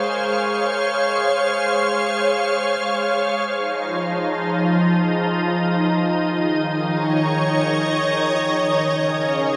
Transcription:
ambient pad
Already playing: G#3 G#4 A#4 C5 C#5 F5
3.49 F3
3.54 D#4
6.17 D#3
6.71 C#5
7.10 D#5
8.81 C#3
9.05 C#4 G#4
9.13 G#5

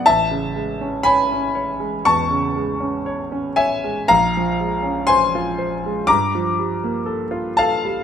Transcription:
grand piano
0.06 A1 E5 A5
0.31 C#3
0.56 G#3
0.81 C#4
1.03 C#5 G#5 B5
1.32 C#4
1.55 C#5
1.80 G#3
2.05 E2 A5 C#6
2.31 C#3
2.56 G#3
2.80 C#4
3.06 C#5
3.32 C#4
3.56 C#5 E5 G#5
3.84 G#3
4.08 A#1 F5 A#5
4.37 F3
4.60 G#3
4.83 C#4
5.07 C5 G#5 C6
5.35 F4
5.58 C5
5.86 G#3
6.07 G2 A#5 D6
6.35 F3
6.59 G3
6.84 A#3
7.06 A4
7.31 F4
7.57 A4 F5 A5
7.85 G3

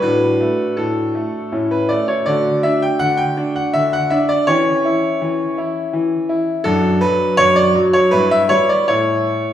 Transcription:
grand piano
0.02 A2 D4 F#4 B4
0.40 A3
0.77 A2 A4
1.15 A3
1.52 A2 C#4 E4
1.71 B4
1.89 A3 D5
2.08 C#5
2.26 D3 A3 F#4 D5
2.63 D4 E5
2.82 G5
2.99 D3 F#5
3.17 G5
3.37 D4
3.56 F#5
3.73 D3 E5
3.93 F#5
4.10 D4 E5
4.29 D5
4.47 E3 C#4 G4 C#5
4.85 E4
5.21 E3
5.58 E4
5.93 E3
6.29 E4
6.64 F#2 D4 F#4 A4
7.01 F#3 B4
7.37 F#2 C#5
7.56 D5
7.75 F#3
7.93 C#5
8.11 G2 B3 E4 B4
8.31 E5
8.49 G3 C#5
8.69 D5
8.88 A2 A3 E4 C#5

